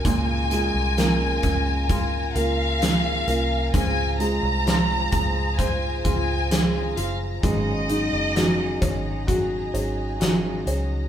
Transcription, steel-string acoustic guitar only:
\new Staff \with { instrumentName = "Steel-string acoustic guitar" } { \time 4/4 \key des \major \tempo 4 = 65 <des aes des' f' bes'>8 <des' f' bes'>8 <aes des' f' bes'>4 <aes des' f' bes'>8 <des' f' bes'>8 <des aes des' f' bes'>8 <des' f' bes'>8 | <des aes c' f' aes'>8 <c' f' aes'>8 <aes c' f' aes'>4 <aes c' f' aes'>8 <c' f' aes'>8 <des aes c' f' aes'>8 <c' f' aes'>8 | <aes, des ges des' ees' aes'>8 <ges des' ees' aes'>8 <aes, des ges des' ees' aes'>4 <ges des' ees' aes'>8 <ges des' ees' aes'>8 <aes, des ges des' ees' aes'>8 <ges des' ees' aes'>8 | }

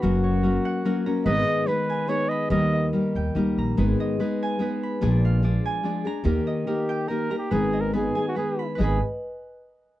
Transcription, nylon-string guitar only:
\new Staff \with { instrumentName = "Nylon-string guitar" } { \time 3/4 \key gis \minor \tempo 4 = 144 <fis, cis fis ais cis' fis'>4 <fis ais cis' fis'>4 <fis ais cis' fis'>8 <fis ais cis' fis'>8 | <gis, dis gis b dis' gis'>4 <gis b dis' gis'>4 <gis b dis' gis'>4 | <dis g ais dis' g'>4 <g ais dis' g'>4 <g ais dis' g'>4 | <gis, dis gis b dis' gis'>4 <gis b dis' gis'>4 <gis b dis' gis'>4 |
<ais, eis gis d' gis'>4 <eis gis d' gis'>4 <eis gis d' gis'>8 <gis d' gis'>8 | <dis ais dis' g'>4 <dis ais dis' g'>4 <dis ais dis' g'>8 <ais dis' g'>8 | <gis, dis gis b dis' gis'>4 <gis b dis' gis'>8 <gis b dis' gis'>8 <gis b dis' gis'>4 | <gis, dis gis b dis' gis'>8 r2 r8 | }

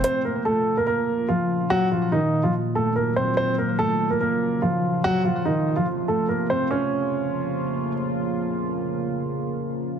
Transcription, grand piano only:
\new Staff \with { instrumentName = "Grand piano" } { \time 4/4 \key bes \minor \tempo 4 = 144 <c' c''>8 <bes bes'>8 <a a'>8. <bes bes'>16 <bes bes'>4 <f f'>4 | <ges ges'>8 <f f'>8 <ees ees'>8. <f f'>16 r8 <a a'>8 <bes bes'>8 <c' c''>8 | <c' c''>8 <bes bes'>8 <a a'>8. <bes bes'>16 <bes bes'>4 <f f'>4 | <ges ges'>8 <f f'>8 <ees ees'>8. <f f'>16 r8 <a a'>8 <bes bes'>8 <c' c''>8 |
des'2. r4 | r1 | }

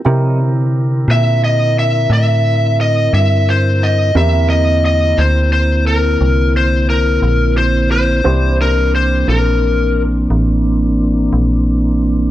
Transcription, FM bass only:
\new Staff \with { instrumentName = "FM bass" } { \clef bass \time 12/8 \key c \mixolydian \tempo 4. = 59 c4. bes,4. a,4. g,4. | e,4. d,4. c,4. bes,,4. | c,4. bes,,4. a,,4. bes,,4. | }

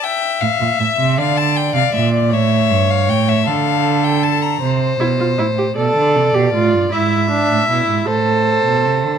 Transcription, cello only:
\new Staff \with { instrumentName = "Cello" } { \clef bass \time 6/8 \key a \phrygian \tempo 4. = 52 r8 a,16 bes,16 a,16 c16 d8. c16 bes,8 | a,8 g,8 a,8 d4. | c8 b,8 a,8 b,16 d16 c16 b,16 a,16 g,16 | gis,8. a,16 b,16 gis,16 a,8. b,16 c16 d16 | }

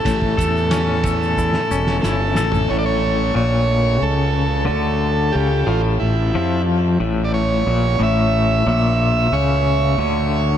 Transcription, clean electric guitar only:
\new Staff \with { instrumentName = "Clean electric guitar" } { \clef bass \time 4/4 \tempo 4 = 91 <a, cis' e' a'>8 a'8 cis'8 a'8 e'8 cis'8 e'8 a'8 | a,4 bes,4 cis4 d4 | cis8 a,8 a,8 f4 a,4 bes,8 | a,4 bes,4 cis4 d4 | }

